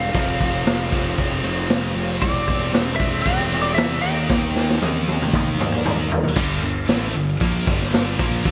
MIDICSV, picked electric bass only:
0, 0, Header, 1, 2, 480
1, 0, Start_track
1, 0, Key_signature, -2, "minor"
1, 0, Tempo, 519481
1, 125, Time_signature, 4, 2, 24, 8
1, 7863, End_track
2, 0, Start_track
2, 0, Title_t, "Picked electric bass"
2, 0, Program_c, 0, 34
2, 140, Note_on_c, 0, 29, 104
2, 578, Note_off_c, 0, 29, 0
2, 608, Note_on_c, 0, 29, 94
2, 1051, Note_off_c, 0, 29, 0
2, 1098, Note_on_c, 0, 29, 91
2, 1314, Note_off_c, 0, 29, 0
2, 1325, Note_on_c, 0, 29, 94
2, 1547, Note_off_c, 0, 29, 0
2, 1570, Note_on_c, 0, 29, 87
2, 1789, Note_off_c, 0, 29, 0
2, 1799, Note_on_c, 0, 29, 93
2, 2054, Note_off_c, 0, 29, 0
2, 2054, Note_on_c, 0, 28, 100
2, 2271, Note_off_c, 0, 28, 0
2, 2291, Note_on_c, 0, 28, 87
2, 2509, Note_off_c, 0, 28, 0
2, 2524, Note_on_c, 0, 28, 97
2, 2968, Note_off_c, 0, 28, 0
2, 3010, Note_on_c, 0, 28, 93
2, 3228, Note_off_c, 0, 28, 0
2, 3234, Note_on_c, 0, 28, 92
2, 3460, Note_off_c, 0, 28, 0
2, 3480, Note_on_c, 0, 40, 87
2, 3703, Note_off_c, 0, 40, 0
2, 3732, Note_on_c, 0, 39, 91
2, 3949, Note_off_c, 0, 39, 0
2, 3970, Note_on_c, 0, 39, 97
2, 4411, Note_off_c, 0, 39, 0
2, 4456, Note_on_c, 0, 39, 92
2, 4894, Note_off_c, 0, 39, 0
2, 4928, Note_on_c, 0, 39, 92
2, 5147, Note_off_c, 0, 39, 0
2, 5164, Note_on_c, 0, 39, 87
2, 5385, Note_off_c, 0, 39, 0
2, 5401, Note_on_c, 0, 39, 86
2, 5624, Note_off_c, 0, 39, 0
2, 5639, Note_on_c, 0, 39, 88
2, 5863, Note_off_c, 0, 39, 0
2, 5875, Note_on_c, 0, 31, 101
2, 6101, Note_off_c, 0, 31, 0
2, 6129, Note_on_c, 0, 31, 83
2, 6349, Note_off_c, 0, 31, 0
2, 6365, Note_on_c, 0, 33, 101
2, 6587, Note_off_c, 0, 33, 0
2, 6611, Note_on_c, 0, 31, 79
2, 6831, Note_off_c, 0, 31, 0
2, 6847, Note_on_c, 0, 34, 96
2, 7068, Note_off_c, 0, 34, 0
2, 7089, Note_on_c, 0, 31, 100
2, 7533, Note_off_c, 0, 31, 0
2, 7572, Note_on_c, 0, 34, 100
2, 7792, Note_off_c, 0, 34, 0
2, 7814, Note_on_c, 0, 38, 102
2, 7863, Note_off_c, 0, 38, 0
2, 7863, End_track
0, 0, End_of_file